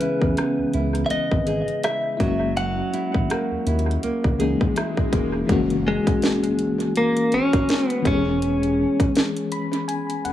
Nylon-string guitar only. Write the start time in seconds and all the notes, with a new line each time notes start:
Already playing: C#3 G#3 B3
0.00 E4
0.37 B3
0.74 E4
1.10 B3
1.47 G#4
1.83 E4
2.20 F#3
2.57 F#3
2.93 E4
3.30 A#3
3.66 E4
4.03 A#3
4.39 G#4
4.76 E4
5.13 A#3